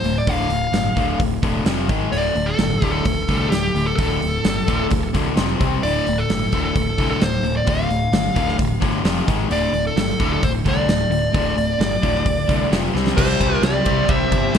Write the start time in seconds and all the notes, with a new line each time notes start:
Already playing: C5
0.04 D1 D2 A2, open hi-hat
0.18 D5
0.27 D1 D2 A2 D3 F5, kick, open hi-hat
0.50 D1 D2 A2, open hi-hat
0.73 G1 D2 A2, snare, open hi-hat
0.96 D1 D2 A2 D3, kick, open hi-hat
1.19 D1 D2 A2, kick, open hi-hat
1.43 E1 D2 A2 D3, kick, open hi-hat
1.66 F1 F2 C3 F3, snare, open hi-hat
1.89 G#1 G#2 D#3 G#3, kick, open hi-hat
2.12 D1 D2 A2 D3 D5, open hi-hat
2.35 D1 D2 A2, open hi-hat
2.46 A4
2.58 G1 D2 A2, snare, open hi-hat
2.82 D1 D2 A2 D3, kick, open hi-hat
2.92 A4
3.05 D1 D2 A2, kick, open hi-hat
3.28 C2 D2 A2 D3, kick, open hi-hat
3.38 A4
3.50 D1 D2 A2 G4, snare, open hi-hat
3.74 D1 D2 A2, open hi-hat
3.87 A4
3.96 D1 D2 A2 D3 A4, kick, open hi-hat
4.21 D1 D2 A2, open hi-hat
4.44 G1 D2 A2, snare, open hi-hat
4.67 D1 D2 A2 D3, kick, open hi-hat
4.90 D1 D2 A2, kick, open hi-hat
5.13 C2 D2 A2 D3, kick, open hi-hat
5.35 F1 F2 C3 F3, snare, open hi-hat
5.59 C2 C3 G3 C4, kick, open hi-hat
5.83 D1 D2 A2 D3 D5, open hi-hat
6.06 D1 D2 A2, open hi-hat
6.18 A4
6.30 G1 D2 A2, snare, open hi-hat
6.52 D1 D2 A2 D3, kick, open hi-hat
6.65 A4
6.75 D1 D2 A2, kick, open hi-hat
6.98 C2 D2 A2 D3, kick, open hi-hat
7.11 A4
7.20 D1 D2 A2 C5, snare, open hi-hat
7.43 D1 D2 A2, open hi-hat
7.57 D5
7.65 D1 D2 A2 D3 F5, kick, open hi-hat
7.89 D1 D2 A2, open hi-hat
8.12 G1 D2 A2, snare, open hi-hat
8.35 D1 D2 A2 D3, kick, open hi-hat
8.49 snare
8.58 D1 D2 A2, kick, open hi-hat
8.80 G1 D2 A2 D3, kick, open hi-hat
9.03 F1 F2 C3 F3, snare, open hi-hat
9.26 G#1 G#2 D#3 G#3, kick, open hi-hat
9.49 D1 D2 A2 D3 D5, open hi-hat
9.73 D1 D2 A2, open hi-hat
9.87 A4
9.96 G1 D2 A2, snare, open hi-hat
10.19 D1 D2 A2 D3, kick, open hi-hat
10.33 A4
10.43 D1 D2 A2 C5, kick, open hi-hat
10.65 C2 D2 A2 D3 D5, kick, open hi-hat
10.86 D1 D2 A2, snare, open hi-hat
11.10 D1 D2 A2, open hi-hat
11.33 D1 D2 A2 D3, kick, open hi-hat
11.56 D1 D2 A2, open hi-hat
11.79 G1 D2 A2, snare, open hi-hat
12.02 D1 D2 A2 D3, kick, open hi-hat
12.15 snare
12.26 D1 D2 A2, kick, open hi-hat
12.49 C2 D2 A2 D3, kick, open hi-hat
12.71 F1 F2 C3 F3, snare, open hi-hat
12.93 C2 C3 G3 C4, snare
12.97 C4
13.07 snare
13.17 C2 C3 G3 C4 E4 G4 C5 D5, kick, crash
13.30 snare
13.40 C2, kick, ride
13.62 C2 G4 D5, snare, ride
13.85 C2 G3 C4 E4 G4 C5, kick, ride
13.89 C3
14.08 C2 C5 E5, kick, ride
14.31 G1, kick, ride
14.54 C2 C3, snare, ride